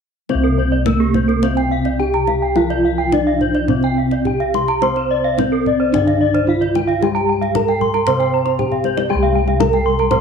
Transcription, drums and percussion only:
0.29 kendang high soft
0.86 kendang high soft
0.86 kendang low soft
1.14 kendang high soft
1.14 kendang low soft
1.29 kendang slap soft
1.43 kendang low soft
1.57 kendang slap soft
1.85 kendang slap soft
2.14 kendang slap soft
2.27 kendang high soft
2.56 kendang high soft
2.70 kendang slap soft
3.12 kendang high soft
3.12 kendang low soft
3.41 kendang low soft
3.55 kendang slap soft
3.68 kendang low soft
3.83 kendang slap soft
4.11 kendang slap soft
4.25 kendang low soft
4.40 kendang slap soft
4.54 kendang high soft
4.68 kendang slap soft
4.82 kendang high soft
4.96 kendang slap soft
5.38 kendang high soft
5.38 kendang low soft
5.66 kendang low soft
5.94 kendang low soft
6.07 kendang slap soft
6.35 kendang slap soft
6.62 kendang slap soft
6.75 kendang high soft
6.89 kendang slap soft
7.02 kendang high soft
7.16 kendang slap soft
7.42 kendang slap soft
7.55 kendang high soft
7.55 kendang low soft
7.68 kendang slap soft
7.81 kendang low soft
7.94 kendang slap soft
8.07 kendang low soft
8.20 kendang slap soft
8.46 kendang slap soft
8.59 kendang low soft
8.72 kendang low soft
8.84 kendang high soft
8.98 kendang high soft
9.48 kendang slap soft
9.60 kendang high soft
9.60 kendang low soft
9.73 kendang slap soft
9.99 kendang slap soft
10.11 kendang high soft
10.11 kendang low soft

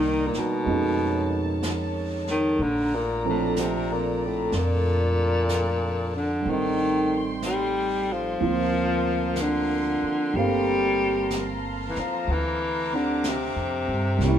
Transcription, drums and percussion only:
0.33 snare soft
0.66 brush sweep soft
1.63 brush sweep soft
1.63 snare soft
1.63 hi-hat pedal soft
2.27 snare soft
2.60 brush sweep soft
3.56 brush sweep soft
3.56 snare soft
3.56 hi-hat pedal soft
4.52 brush sweep soft
4.52 snare soft
5.49 brush sweep soft
5.49 snare soft
5.49 hi-hat pedal soft
6.46 brush sweep soft
7.42 brush sweep soft
7.42 snare soft
7.42 hi-hat pedal soft
8.40 brush sweep soft
9.36 brush sweep soft
9.36 snare soft
9.36 hi-hat pedal soft
10.32 brush sweep soft
11.30 brush sweep soft
11.30 snare soft
11.30 hi-hat pedal soft
11.96 snare soft
12.27 brush sweep soft
13.24 brush sweep soft
13.24 snare soft
13.24 hi-hat pedal soft
14.20 brush sweep soft
14.20 snare soft

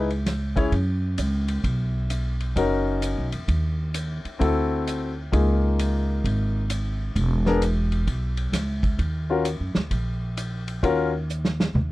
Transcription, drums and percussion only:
0.10 ride soft
0.26 snare soft
0.26 hi-hat pedal medium
0.26 ride medium
0.56 kick soft
0.56 ride soft
0.72 kick soft
0.72 ride medium
1.18 hi-hat pedal medium
1.18 ride medium
1.48 ride soft
1.64 kick soft
1.64 ride soft
2.10 hi-hat pedal medium
2.10 ride medium
2.40 ride soft
2.56 kick soft
2.56 ride medium
3.02 hi-hat pedal medium
3.02 ride medium
3.32 ride soft
3.48 kick soft
3.48 ride medium
3.94 hi-hat pedal medium
3.94 ride medium
4.25 ride soft
4.41 kick soft
4.41 ride medium
4.87 hi-hat pedal medium
4.87 ride medium
5.33 kick soft
5.33 ride soft
5.79 hi-hat pedal medium
5.79 ride medium
6.24 kick soft
6.24 ride medium
6.70 hi-hat pedal medium
6.70 ride medium
7.16 kick soft
7.16 ride medium
7.46 snare soft
7.62 hi-hat pedal medium
7.62 ride medium
7.92 ride soft
8.07 kick soft
8.07 ride medium
8.37 ride soft
8.53 snare soft
8.53 hi-hat pedal medium
8.53 ride medium
8.83 kick medium
8.83 ride soft
8.99 kick soft
8.99 ride medium
9.45 hi-hat pedal medium
9.45 ride medium
9.75 snare soft
9.91 kick soft
9.91 ride medium
10.37 hi-hat pedal medium
10.37 ride medium
10.68 ride soft
10.83 kick soft
10.83 ride medium
11.30 hi-hat pedal soft
11.45 snare soft
11.60 snare medium
11.75 mid tom medium

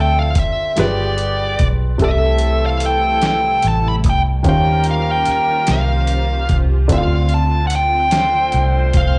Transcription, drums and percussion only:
0.35 kick loud
0.35 closed hi-hat medium
0.77 snare loud
0.77 closed hi-hat medium
1.18 closed hi-hat medium
1.59 kick medium
1.59 closed hi-hat medium
1.99 kick loud
1.99 closed hi-hat medium
2.38 closed hi-hat medium
2.80 closed hi-hat medium
3.21 snare loud
3.21 closed hi-hat medium
3.62 closed hi-hat medium
4.04 kick medium
4.04 closed hi-hat medium
4.44 kick loud
4.44 closed hi-hat medium
4.84 closed hi-hat medium
5.25 closed hi-hat medium
5.67 snare loud
5.67 closed hi-hat medium
6.07 closed hi-hat medium
6.49 kick medium
6.49 closed hi-hat medium
6.89 kick loud
6.89 closed hi-hat medium
7.29 closed hi-hat medium
7.70 closed hi-hat medium
8.11 snare loud
8.11 closed hi-hat medium
8.52 closed hi-hat medium
8.93 kick loud
8.93 closed hi-hat medium

